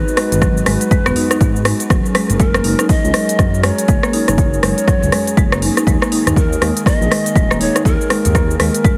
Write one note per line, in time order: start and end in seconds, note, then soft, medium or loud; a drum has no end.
0.00 1.86 G#3 medium
0.00 1.86 D#4 medium
0.00 1.89 F#4 medium
0.00 0.63 B4 loud
0.00 1.86 B4 medium
0.08 shaker soft
0.17 0.30 G#3 medium
0.17 cross-stick loud
0.17 open hi-hat loud
0.32 0.61 G#1 medium
0.32 closed hi-hat medium
0.32 mid tom medium
0.32 shaker medium
0.42 0.56 F#3 medium
0.42 kick loud
0.42 cross-stick medium
0.42 closed hi-hat soft
0.42 shaker medium
0.57 shaker soft
0.66 0.77 G#1 medium
0.66 0.80 G#3 loud
0.66 1.62 B4 medium
0.66 cross-stick medium
0.66 open hi-hat medium
0.81 closed hi-hat medium
0.81 shaker medium
0.91 1.05 G#3 loud
0.91 kick loud
0.91 closed hi-hat soft
0.91 mid tom medium
0.91 shaker medium
1.06 1.13 D#1 medium
1.06 1.12 B3 loud
1.06 cross-stick loud
1.06 mid tom medium
1.06 shaker soft
1.16 1.30 D#4 medium
1.16 open hi-hat medium
1.31 1.40 D#4 medium
1.31 cross-stick medium
1.31 closed hi-hat medium
1.31 shaker medium
1.41 1.73 G#2 medium
1.41 kick loud
1.41 closed hi-hat soft
1.41 shaker medium
1.56 shaker soft
1.65 1.79 G#3 medium
1.65 cross-stick loud
1.65 open hi-hat medium
1.80 closed hi-hat medium
1.80 shaker medium
1.90 2.00 F#1 loud
1.90 5.83 F#3 medium
1.90 2.05 F#3 medium
1.90 5.83 C#4 medium
1.90 8.97 G#4 medium
1.90 5.83 A#4 loud
1.90 kick loud
1.90 cross-stick medium
1.90 closed hi-hat soft
1.90 shaker medium
2.06 shaker soft
2.15 2.29 G#3 loud
2.15 cross-stick loud
2.15 open hi-hat medium
2.30 2.60 F#1 medium
2.30 closed hi-hat medium
2.30 mid tom medium
2.30 shaker medium
2.40 2.53 G#3 loud
2.40 2.91 A#4 loud
2.40 kick loud
2.40 closed hi-hat soft
2.40 shaker medium
2.54 2.60 A#3 loud
2.54 cross-stick loud
2.54 shaker soft
2.64 2.75 F#1 medium
2.64 2.78 D#4 medium
2.64 open hi-hat medium
2.79 2.88 D#4 medium
2.79 cross-stick medium
2.79 closed hi-hat medium
2.79 shaker medium
2.89 3.65 D#5 loud
2.89 kick loud
2.89 open hi-hat medium
2.89 shaker medium
3.04 3.11 C#2 medium
3.04 shaker soft
3.14 3.28 G#3 medium
3.14 cross-stick medium
3.14 open hi-hat medium
3.29 closed hi-hat medium
3.29 shaker medium
3.39 3.71 F#2 medium
3.39 3.53 F#3 medium
3.39 kick loud
3.39 cross-stick medium
3.39 closed hi-hat soft
3.39 shaker medium
3.54 shaker soft
3.63 3.77 G#3 medium
3.63 4.62 C#5 loud
3.63 cross-stick loud
3.63 open hi-hat medium
3.78 closed hi-hat medium
3.78 shaker medium
3.88 3.99 F#1 loud
3.88 4.02 G#3 loud
3.88 kick loud
3.88 closed hi-hat soft
3.88 shaker medium
4.03 4.09 A#3 loud
4.03 cross-stick medium
4.03 shaker soft
4.13 4.27 D#4 medium
4.13 open hi-hat medium
4.28 4.58 F#1 medium
4.28 4.37 D#4 medium
4.28 cross-stick medium
4.28 closed hi-hat medium
4.28 mid tom loud
4.28 shaker medium
4.38 kick loud
4.38 closed hi-hat soft
4.38 shaker medium
4.54 shaker soft
4.62 4.73 F#1 medium
4.62 4.76 G#3 medium
4.62 5.58 C#5 loud
4.62 cross-stick medium
4.62 open hi-hat medium
4.78 closed hi-hat medium
4.78 shaker medium
4.88 5.02 F#3 medium
4.88 kick loud
4.88 cross-stick medium
4.88 closed hi-hat soft
4.88 mid tom medium
4.88 shaker medium
5.02 5.09 C#2 medium
5.02 mid tom medium
5.02 shaker soft
5.12 5.26 G#3 loud
5.12 cross-stick medium
5.12 open hi-hat medium
5.27 closed hi-hat medium
5.27 shaker medium
5.37 5.69 F#1 medium
5.37 5.51 G#3 loud
5.37 kick loud
5.37 closed hi-hat soft
5.37 shaker medium
5.52 5.58 A#3 loud
5.52 cross-stick loud
5.52 shaker soft
5.62 5.76 D#4 medium
5.62 open hi-hat medium
5.77 5.86 D#4 medium
5.77 cross-stick medium
5.77 closed hi-hat medium
5.77 shaker medium
5.86 5.97 D#2 loud
5.86 8.97 D#3 medium
5.86 6.00 G#3 loud
5.86 8.97 A#3 medium
5.86 8.97 D#4 medium
5.86 kick loud
5.86 closed hi-hat soft
5.86 shaker medium
6.02 6.07 A#3 loud
6.02 cross-stick medium
6.02 shaker soft
6.12 6.25 D#4 medium
6.12 open hi-hat medium
6.27 6.56 D#2 medium
6.27 6.36 D#4 medium
6.27 cross-stick medium
6.27 closed hi-hat medium
6.27 mid tom loud
6.27 shaker medium
6.36 6.83 A#4 medium
6.36 kick loud
6.36 closed hi-hat soft
6.36 shaker medium
6.53 shaker soft
6.61 6.71 D#2 medium
6.61 6.75 G#3 medium
6.61 cross-stick medium
6.61 open hi-hat medium
6.77 closed hi-hat medium
6.77 shaker medium
6.86 7.00 A#3 medium
6.86 7.62 D#5 loud
6.86 kick loud
6.86 cross-stick medium
6.86 open hi-hat soft
6.86 shaker medium
7.01 7.08 A#1 medium
7.01 shaker soft
7.11 7.24 G#3 loud
7.11 cross-stick medium
7.11 open hi-hat medium
7.26 closed hi-hat medium
7.26 shaker medium
7.36 7.68 D#1 medium
7.36 7.49 G#3 loud
7.36 kick loud
7.36 closed hi-hat soft
7.36 shaker medium
7.51 7.56 A#3 loud
7.51 cross-stick medium
7.51 shaker soft
7.61 7.74 D#4 medium
7.61 7.85 C#5 loud
7.61 open hi-hat medium
7.75 7.84 D#4 medium
7.75 cross-stick medium
7.75 closed hi-hat medium
7.75 shaker medium
7.85 7.95 D#2 loud
7.85 8.56 A#4 loud
7.85 kick loud
7.85 closed hi-hat soft
7.85 shaker medium
8.01 shaker soft
8.10 8.24 G#3 medium
8.10 cross-stick medium
8.10 open hi-hat medium
8.25 8.55 D#2 medium
8.25 closed hi-hat medium
8.25 mid tom loud
8.25 shaker medium
8.35 8.48 A#3 medium
8.35 kick loud
8.35 cross-stick medium
8.35 closed hi-hat soft
8.35 shaker medium
8.51 shaker soft
8.60 8.70 D#2 medium
8.60 8.73 G#3 loud
8.60 8.97 A#4 medium
8.60 cross-stick medium
8.60 open hi-hat medium
8.74 closed hi-hat medium
8.74 shaker medium
8.84 8.97 G#3 loud
8.84 kick loud
8.84 closed hi-hat soft
8.84 mid tom medium
8.84 shaker medium